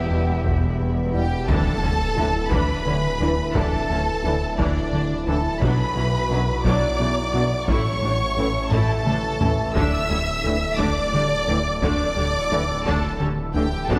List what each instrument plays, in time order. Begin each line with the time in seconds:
Already playing: double bass section E1, detuned saw bass E1, cello section E2, synth drone G3 B3 B4 E5, viola section B3 G4, cello E4, violin section G4 E5
0.10 analog synth bass E2, trombone section B2 G3, french horn section B3 E4
0.45 analog synth bass E2, taiko
0.80 analog synth bass E2
1.13 analog synth bass E2, trombone section B2 G3, french horn section B3 E4, violin section G4 G5
1.48 detuned saw bass D1, double bass section D2, analog synth bass D2, cello section D3, synth drone E3 E4 A4 E5, viola section E3 D4, violin section A4 A5, taiko, impact
1.82 double bass section D2, analog synth bass D2, cello section D3, viola section D3 C#4
2.16 double bass section D2, analog synth bass D2, trombone section A2 E3, cello section D3, viola section E3 D4, french horn section D4 E4
2.51 analog synth bass D2, double bass section D2, cello section D3, viola section E3 D4, violin section B4 B5, taiko
2.86 double bass section D2, viola section D3 C#4, analog synth bass D3, cello section D3
3.20 analog synth bass D2, double bass section D2, trombone section A2 E3, cello section D3, viola section E3 D4, french horn section D4 E4
3.54 analog synth bass D2, double bass section D2, cello section D3, viola section E3 D4, violin section A4 A5, taiko
3.89 analog synth bass D2, double bass section D2, cello section D3, viola section D3 C#4
4.22 analog synth bass D2, double bass section D2, cello section D3, viola section E3 D4, trombone section E3, french horn section D4 E4
4.26 trombone section A2
4.58 double bass section D2, analog synth bass D2, cello section D3, viola section E3 D4, violin section D4 D5, taiko
4.92 double bass section D2, viola section D3 D4, cello section D3, analog synth bass D3
5.27 double bass section D2, analog synth bass D2, trombone section A2 E3, cello section D3, viola section E3 D4, french horn section D4 E4, violin section A4 A5
5.60 double bass section B1, detuned saw bass B1, cello section B2, analog synth bass B2, synth drone F#3 F#4, viola section F#3 D4, violin section B4 B5, taiko
5.96 double bass section B1, cello section B2, analog synth bass B2, viola section E3 C#4
6.30 double bass section B1, trombone section F#2 F#3, cello section B2, analog synth bass B2, viola section F#3 D4, french horn section B3 D4
6.64 double bass section B1, cello section B2, analog synth bass B2, viola section F#3 D4, violin section D5 D6, taiko
6.99 double bass section B1, cello section B2, viola section C#3 E3, analog synth bass B3
7.33 double bass section B1, trombone section F#2 F#3, analog synth bass B2, cello section B2, viola section F#3 D4, french horn section B3 D4
7.68 double bass section A1, detuned saw bass A1, cello section A2, analog synth bass A2, synth drone E3 A4 C#5 E5, viola section A3 E4, violin section C#5 C#6, taiko
8.02 double bass section A1, analog synth bass A2, cello section A2, viola section G3 D4
8.37 double bass section A1, cello section A2, trombone section A2 E3, analog synth bass A2, viola section A3 E4, french horn section A3 C#4
8.71 double bass section A1, analog synth bass A2, cello section A2, viola section A3 E4, violin section A4 A5, taiko low-mid
9.05 double bass section A1, cello section A2, viola section G3 D4, analog synth bass A3, taiko mid
9.40 double bass section A1, trombone section A2 E3, cello section A2, analog synth bass A2, viola section A3 E4, french horn section A3 C#4, taiko low
9.74 detuned saw bass D1, double bass section D2, analog synth bass D2, cello section D3, synth drone D3 E5, viola section A3 D4, violin section E5 E6, taiko
10.09 double bass section D2, analog synth bass D2, cello section D3, viola section G3 C#4
10.43 analog synth bass D2, double bass section D2, trombone section A2 E3, cello section D3, french horn section A3 D4, viola section A3 D4
10.78 double bass section D2, analog synth bass D2, cello section D3, viola section A3 D4, violin section D5 D6, taiko
11.13 double bass section D2, cello section D3, analog synth bass D3, viola section G3 D4
11.47 analog synth bass D2, double bass section D2, trombone section A2 E3, cello section D3, french horn section A3 D4, viola section A3 D4
11.81 double bass section D2, analog synth bass D2, cello section D3, viola section A3 D4, violin section D5 D6, taiko
12.16 analog synth bass D2, double bass section D2, cello section D3, viola section G3 D4
12.51 analog synth bass D2, double bass section D2, trombone section A2 E3, cello section D3, viola section A3 D4, french horn section A3 D4
12.85 analog synth bass D2, double bass section D2, cello section D3, viola section A3 D4, violin section A4 A5, taiko
13.19 double bass section D2, analog synth bass D3, cello section D3, viola section G3 C#4
13.55 analog synth bass D2, double bass section D2, trombone section A2 E3, cello section D3, french horn section A3 D4, viola section A3 D4, violin section G4 G5
13.89 double bass section B1, detuned saw bass B1, cello section B2, analog synth bass B2, synth drone F#3 B4, viola section B3 D4, violin section A4 A5, taiko